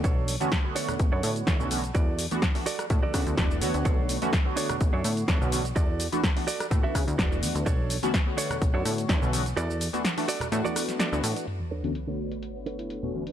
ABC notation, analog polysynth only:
X:1
M:4/4
L:1/16
Q:"Swing 16ths" 1/4=126
K:Bm
V:1 name="Analog polysynth"
z3 [D,A,B,CF] z [D,A,B,Fc]8 [D,A,B,CF] [D,A,B,CF] z | z3 [E,A,B,DF] z [E,A,B,DF] z2 [E,A,B,DF]2 [E,A,B,DF]2 [E,A,B,DF] [E,A,B,DF] [D,A,B,Fc]2- | [D,A,B,Fc]3 [D,A,B,CF] z [D,A,B,Fc]8 [D,A,B,CF] [D,A,B,CF] z | z3 [E,A,B,DF] z [E,A,B,DF] z2 [E,A,B,DF]4- [E,A,B,DF] [E,A,B,DF]3 |
z3 [D,A,B,CF] z [D,A,B,Fc]8 [D,A,B,CF] [D,A,B,CF] z | z3 [E,A,B,DF] z [E,A,B,DF] z2 [E,A,B,DF]4- [E,A,B,DF] [E,A,B,DF]3 | z3 [D,A,B,CF] z [D,A,B,Fc]8 [D,A,B,CF] [D,A,B,CF] z |]